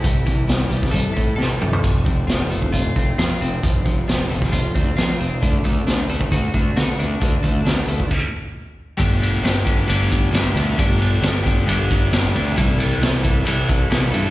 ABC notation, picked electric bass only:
X:1
M:4/4
L:1/8
Q:1/4=134
K:Flyd
V:1 name="Picked electric bass" clef=bass
C,, C,, C,, C,, C,, A,, C, F,,, | F,,, F,,, F,,, F,,, F,,, F,,, F,, F,,, | F,,, F,,, F,,, F,,, F,,, D,, F,, F,,, | D,, D,, D,, D,, D,, D,, D, D,, |
D,, D,, D,, D,, z4 | G,,,2 G,,,2 G,,,2 G,,, D,, | G,,,2 G,,,2 G,,,2 G,,, D,, | C,,2 C,,2 C,,2 C,, G,, |]